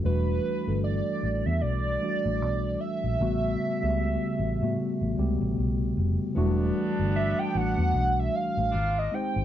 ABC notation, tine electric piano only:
X:1
M:4/4
L:1/16
Q:"Swing 16ths" 1/4=76
K:Edor
V:1 name="Tine electric piano"
[E,G,A,DF]3 [E,G,A,DA]6 z [E,G,A,DF]4- [E,G,A,DF] z | [C,G,A,B,F]3 [C,G,A,B,G]4 [C,G,A,B,F]3 [=C,^C,G,A,B,G]4- [=C,^C,G,A,B,G] z | [E,F,G,A,DF]4- [E,F,G,A,DF] z [E,G,A,DF]6 z2 [^G,^B,^D=G^B]2 |]